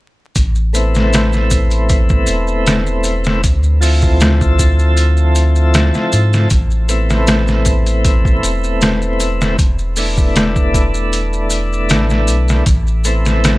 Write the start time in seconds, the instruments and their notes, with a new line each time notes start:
0.36 sub bass A1, kick, closed hi-hat, maracas
0.56 maracas
0.73 tonewheel organ A3 B3 C4 E4, closed hi-hat, maracas
0.95 snare, maracas
1.13 snare, closed hi-hat, maracas
1.33 snare, maracas
1.50 kick, closed hi-hat, maracas
1.71 closed hi-hat, maracas
1.89 kick, closed hi-hat, maracas
2.09 kick, maracas
2.27 sub bass E1, closed hi-hat, maracas
2.47 maracas
2.66 snare, closed hi-hat, maracas
2.86 maracas
3.03 closed hi-hat, maracas
3.24 snare, maracas
3.44 sub bass D2, kick, closed hi-hat, maracas
3.63 maracas
3.81 tonewheel organ F3 C4 E4 A4, open hi-hat, maracas
4.02 kick, maracas
4.20 snare, closed hi-hat, maracas
4.41 kick, maracas
4.59 kick, closed hi-hat, maracas
4.79 maracas
4.97 closed hi-hat, maracas
5.17 maracas
5.35 closed hi-hat, maracas
5.56 maracas
5.74 snare, closed hi-hat, maracas
5.94 snare, maracas
6.12 sub bass G#2, closed hi-hat, maracas
6.33 snare, maracas
6.50 sub bass A1, kick, closed hi-hat, maracas
6.71 maracas
6.88 tonewheel organ A3 B3 C4 E4, closed hi-hat, maracas
7.10 snare, maracas
7.27 snare, closed hi-hat, maracas
7.48 snare, maracas
7.65 kick, closed hi-hat, maracas
7.86 closed hi-hat, maracas
8.05 kick, closed hi-hat, maracas
8.25 kick, maracas
8.43 sub bass E1, closed hi-hat, maracas
8.64 maracas
8.81 snare, closed hi-hat, maracas
9.02 maracas
9.20 closed hi-hat, maracas
9.41 snare, maracas
9.59 sub bass E1, kick, closed hi-hat, maracas
9.79 maracas
9.96 tonewheel organ A3 B3 D4 E4, open hi-hat, maracas
10.17 kick, maracas
10.36 snare, closed hi-hat, maracas
10.56 kick, maracas
10.74 kick, closed hi-hat, maracas
10.95 maracas
11.13 closed hi-hat, maracas
11.33 maracas
11.50 closed hi-hat, maracas
11.73 maracas
11.89 sub bass A1, snare, closed hi-hat, maracas
12.10 snare, maracas
12.28 sub bass B1, closed hi-hat, maracas
12.48 snare, maracas
12.66 sub bass A1, kick, closed hi-hat, maracas
12.87 maracas
13.04 tonewheel organ A3 B3 C4 E4, closed hi-hat, maracas
13.26 snare, maracas
13.44 snare, closed hi-hat, maracas